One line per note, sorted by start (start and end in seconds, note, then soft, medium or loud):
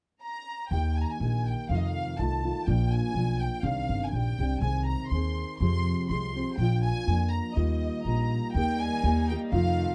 0.23 0.68 A#5 medium
0.71 1.03 D#2 medium
0.71 1.19 D#3 medium
0.71 1.20 A#3 soft
0.71 1.21 D#4 soft
0.71 1.22 G4 soft
0.71 0.97 G5 medium
0.98 1.04 G#5 medium
1.04 1.11 A#5 medium
1.10 1.47 G#5 medium
1.20 1.52 A#1 medium
1.20 1.69 D#3 soft
1.20 1.70 A#3 soft
1.20 1.70 D#4 soft
1.20 1.71 G4 soft
1.48 1.70 G5 medium
1.69 2.01 F2 medium
1.69 2.19 F2 medium
1.69 2.19 C3 soft
1.69 2.17 D#3 medium
1.69 2.18 A3 medium
1.69 2.18 D#4 medium
1.69 2.19 F4 soft
1.69 1.77 F5 medium
1.77 1.85 D#5 medium
1.85 2.19 F5 medium
2.18 2.50 C2 medium
2.18 2.44 D#3 soft
2.18 2.43 A3 soft
2.18 2.43 D#4 medium
2.18 2.43 F4 soft
2.18 2.67 A5 medium
2.44 2.67 D#3 soft
2.44 2.67 A3 soft
2.44 2.67 D#4 soft
2.44 2.66 F4 soft
2.67 2.99 A#1 medium
2.67 3.15 A#2 medium
2.67 3.13 F3 medium
2.67 3.14 A#3 medium
2.67 3.14 D4 medium
2.67 3.15 F4 medium
2.67 2.93 G5 medium
2.93 3.41 G#5 medium
3.14 3.46 B1 medium
3.14 3.63 F3 soft
3.14 3.63 A#3 soft
3.14 3.63 D4 soft
3.14 3.64 F4 medium
3.41 3.64 G5 medium
3.63 3.80 C2 medium
3.63 4.12 C3 medium
3.63 4.11 D#3 medium
3.63 4.13 C4 medium
3.63 4.13 D4 medium
3.63 4.13 G4 medium
3.63 4.06 F5 medium
3.89 4.10 G1 medium
4.06 4.13 G#5 medium
4.12 4.36 A#1 medium
4.12 4.39 D#3 soft
4.12 4.39 C4 soft
4.12 4.39 D4 soft
4.12 4.38 G4 soft
4.12 4.62 G5 medium
4.39 4.60 C2 medium
4.39 4.62 C4 soft
4.39 4.63 D4 soft
4.39 4.63 G4 soft
4.61 4.94 C2 medium
4.61 5.12 C3 soft
4.61 5.10 D#3 soft
4.61 5.11 G#3 medium
4.61 5.12 C4 soft
4.61 5.12 G#4 medium
4.61 4.87 G#5 medium
4.87 5.09 A#5 medium
5.11 5.43 D#2 medium
5.11 5.61 D#3 soft
5.11 5.61 G#3 soft
5.11 5.61 C4 soft
5.11 5.62 G#4 soft
5.11 5.57 C6 medium
5.59 5.92 F2 medium
5.59 6.10 F2 medium
5.59 6.10 C3 medium
5.59 6.09 F3 medium
5.59 6.09 G#3 medium
5.59 6.09 C4 medium
5.59 6.09 G4 medium
5.59 6.05 C6 loud
6.09 6.41 C2 medium
6.09 6.35 F3 soft
6.09 6.35 G#3 medium
6.09 6.35 C4 soft
6.09 6.34 G4 soft
6.09 6.54 C6 medium
6.35 6.59 F3 soft
6.35 6.59 G#3 soft
6.35 6.59 C4 soft
6.35 6.58 G4 soft
6.58 6.90 A#1 medium
6.58 7.08 A#2 medium
6.58 7.07 F3 medium
6.58 7.08 A#3 medium
6.58 7.08 D4 medium
6.58 7.08 F4 medium
6.58 6.84 G5 medium
6.83 7.29 G#5 loud
7.07 7.39 F2 medium
7.07 7.55 F3 soft
7.07 7.55 A#3 medium
7.07 7.56 D4 soft
7.07 7.56 F4 medium
7.32 7.56 A#5 medium
7.55 7.88 D#2 medium
7.55 8.10 D#3 medium
7.55 8.04 G3 medium
7.55 8.05 A#3 medium
7.55 8.06 D#4 medium
7.55 8.05 F4 medium
7.55 8.31 D#5 medium
8.04 8.37 A#1 medium
8.04 8.55 G3 soft
8.04 8.55 A#3 soft
8.04 8.55 D#4 soft
8.04 8.55 F4 soft
8.04 8.50 A#5 medium
8.54 8.87 D#2 medium
8.54 9.03 D#3 medium
8.54 9.52 G3 medium
8.54 9.04 A#3 medium
8.54 9.53 A#3 medium
8.54 9.95 D#4 medium
8.54 9.04 D#4 medium
8.54 9.05 G4 medium
8.54 8.79 G5 loud
8.81 9.30 G#5 loud
9.03 9.35 D#2 medium
9.03 9.30 D#3 medium
9.03 9.31 A#3 medium
9.03 9.31 D#4 medium
9.03 9.30 G4 medium
9.29 9.54 A#3 soft
9.29 9.53 D#4 soft
9.29 9.53 G4 medium
9.29 9.40 G5 medium
9.52 9.83 F2 medium
9.52 9.95 F2 medium
9.52 9.95 C3 medium
9.52 9.95 D#3 medium
9.52 9.95 A3 medium
9.52 9.95 D#4 medium
9.52 9.95 F4 medium
9.52 9.95 F5 medium